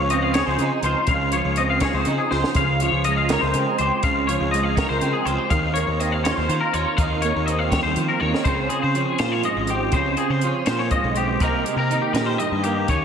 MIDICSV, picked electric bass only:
0, 0, Header, 1, 2, 480
1, 0, Start_track
1, 0, Tempo, 491803
1, 1055, Time_signature, 6, 3, 24, 8
1, 12735, End_track
2, 0, Start_track
2, 0, Title_t, "Picked electric bass"
2, 0, Program_c, 0, 34
2, 0, Note_on_c, 0, 37, 73
2, 398, Note_off_c, 0, 37, 0
2, 458, Note_on_c, 0, 37, 80
2, 563, Note_off_c, 0, 37, 0
2, 567, Note_on_c, 0, 49, 90
2, 677, Note_off_c, 0, 49, 0
2, 806, Note_on_c, 0, 37, 78
2, 916, Note_off_c, 0, 37, 0
2, 1049, Note_on_c, 0, 37, 86
2, 1370, Note_off_c, 0, 37, 0
2, 1412, Note_on_c, 0, 37, 72
2, 1837, Note_off_c, 0, 37, 0
2, 1888, Note_on_c, 0, 37, 72
2, 1997, Note_off_c, 0, 37, 0
2, 2013, Note_on_c, 0, 49, 84
2, 2119, Note_off_c, 0, 49, 0
2, 2260, Note_on_c, 0, 37, 78
2, 2363, Note_off_c, 0, 37, 0
2, 2493, Note_on_c, 0, 37, 81
2, 2811, Note_off_c, 0, 37, 0
2, 2852, Note_on_c, 0, 37, 74
2, 3276, Note_off_c, 0, 37, 0
2, 3341, Note_on_c, 0, 37, 76
2, 3442, Note_off_c, 0, 37, 0
2, 3461, Note_on_c, 0, 49, 85
2, 3563, Note_off_c, 0, 49, 0
2, 3700, Note_on_c, 0, 37, 77
2, 3802, Note_off_c, 0, 37, 0
2, 3937, Note_on_c, 0, 37, 89
2, 4252, Note_off_c, 0, 37, 0
2, 4297, Note_on_c, 0, 37, 79
2, 4718, Note_off_c, 0, 37, 0
2, 4783, Note_on_c, 0, 37, 73
2, 4883, Note_off_c, 0, 37, 0
2, 4894, Note_on_c, 0, 49, 88
2, 4998, Note_off_c, 0, 49, 0
2, 5133, Note_on_c, 0, 37, 78
2, 5237, Note_off_c, 0, 37, 0
2, 5375, Note_on_c, 0, 39, 86
2, 5691, Note_off_c, 0, 39, 0
2, 5732, Note_on_c, 0, 39, 77
2, 6155, Note_off_c, 0, 39, 0
2, 6221, Note_on_c, 0, 39, 79
2, 6321, Note_off_c, 0, 39, 0
2, 6334, Note_on_c, 0, 51, 91
2, 6438, Note_off_c, 0, 51, 0
2, 6575, Note_on_c, 0, 39, 81
2, 6678, Note_off_c, 0, 39, 0
2, 6811, Note_on_c, 0, 39, 88
2, 7128, Note_off_c, 0, 39, 0
2, 7182, Note_on_c, 0, 39, 76
2, 7601, Note_off_c, 0, 39, 0
2, 7656, Note_on_c, 0, 39, 77
2, 7759, Note_off_c, 0, 39, 0
2, 7775, Note_on_c, 0, 51, 85
2, 7878, Note_off_c, 0, 51, 0
2, 8017, Note_on_c, 0, 39, 75
2, 8120, Note_off_c, 0, 39, 0
2, 8249, Note_on_c, 0, 37, 80
2, 8462, Note_off_c, 0, 37, 0
2, 8621, Note_on_c, 0, 49, 84
2, 8829, Note_off_c, 0, 49, 0
2, 8976, Note_on_c, 0, 46, 86
2, 9186, Note_off_c, 0, 46, 0
2, 9333, Note_on_c, 0, 32, 83
2, 9651, Note_off_c, 0, 32, 0
2, 9686, Note_on_c, 0, 37, 83
2, 9901, Note_off_c, 0, 37, 0
2, 10050, Note_on_c, 0, 49, 82
2, 10264, Note_off_c, 0, 49, 0
2, 10411, Note_on_c, 0, 46, 87
2, 10625, Note_off_c, 0, 46, 0
2, 10771, Note_on_c, 0, 35, 84
2, 11091, Note_off_c, 0, 35, 0
2, 11133, Note_on_c, 0, 36, 85
2, 11347, Note_off_c, 0, 36, 0
2, 11480, Note_on_c, 0, 48, 79
2, 11700, Note_off_c, 0, 48, 0
2, 11843, Note_on_c, 0, 46, 85
2, 12062, Note_off_c, 0, 46, 0
2, 12218, Note_on_c, 0, 43, 85
2, 12538, Note_off_c, 0, 43, 0
2, 12579, Note_on_c, 0, 39, 84
2, 12735, Note_off_c, 0, 39, 0
2, 12735, End_track
0, 0, End_of_file